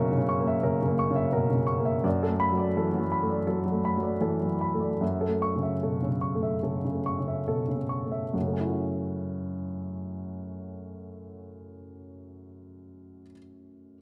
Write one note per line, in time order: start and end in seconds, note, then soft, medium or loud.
0.00 0.60 F#2 medium
0.00 0.17 B2 soft
0.00 0.11 C#3 medium
0.00 0.40 A#3 medium
0.00 0.63 A#4 medium
0.00 0.47 E5 medium
0.00 0.29 C#6 medium
0.11 0.16 C#3 medium
0.17 0.54 C#3 medium
0.29 0.57 C#6 medium
0.40 0.78 A#3 medium
0.47 0.75 E5 medium
0.63 0.80 C#3 medium
0.63 0.92 A#4 medium
0.82 1.09 C#3 medium
0.88 1.25 A#3 medium
0.99 1.27 C#6 medium
1.11 1.48 C#3 medium
1.16 1.44 E5 medium
1.33 1.57 B2 medium
1.33 1.62 A#4 medium
1.50 1.53 C#3 soft
1.55 1.94 C#3 soft
1.67 1.96 C#6 medium
1.78 2.03 A#3 soft
1.85 2.04 E5 medium
2.04 3.44 F#2 medium
2.04 2.33 D5 medium
2.23 2.51 A4 medium
2.28 2.66 A3 soft
2.40 2.68 B5 medium
2.52 2.90 F#3 soft
2.57 2.86 D5 medium
2.76 3.00 E3 soft
2.76 3.05 A4 medium
2.94 2.98 F#3 soft
2.99 3.39 F#3 soft
3.12 3.41 B5 medium
3.23 3.63 A3 soft
3.29 3.59 D5 soft
3.47 3.64 F#3 soft
3.47 3.78 A4 soft
3.66 3.96 F#3 soft
3.72 4.13 A3 soft
3.85 4.15 B5 medium
3.98 4.38 F#3 soft
4.03 4.34 D5 soft
4.21 4.48 E3 soft
4.21 4.53 A4 soft
4.40 4.45 F#3 soft
4.47 4.90 F#3 soft
4.61 4.93 B5 soft
4.75 5.01 A3 soft
4.80 5.01 D5 soft
5.01 6.61 F#2 soft
5.01 5.34 E5 soft
5.21 5.54 A4 soft
5.28 5.72 A3 soft
5.42 5.74 C#6 medium
5.56 5.99 C#3 soft
5.63 5.95 E5 soft
5.83 6.10 B2 soft
5.83 6.16 A4 soft
6.02 6.07 C#3 soft
6.08 6.53 C#3 soft
6.21 6.56 C#6 soft
6.35 6.81 A3 soft
6.43 6.77 E5 soft
6.63 6.83 C#3 soft
6.63 6.98 A4 soft
6.85 7.18 C#3 soft
6.93 7.38 A3 soft
7.06 7.40 C#6 soft
7.20 7.66 C#3 soft
7.28 7.62 E5 soft
7.48 7.77 B2 soft
7.48 7.83 A4 soft
7.68 7.75 C#3 soft
7.77 8.23 C#3 soft
7.89 8.25 C#6 soft
8.04 8.34 A3 soft
8.12 8.34 E5 soft
8.34 13.20 F#2 soft
8.40 13.23 C#3 soft
8.47 13.26 A3 soft
8.53 13.29 C#4 soft
8.60 13.33 E4 soft
8.67 13.36 F#4 soft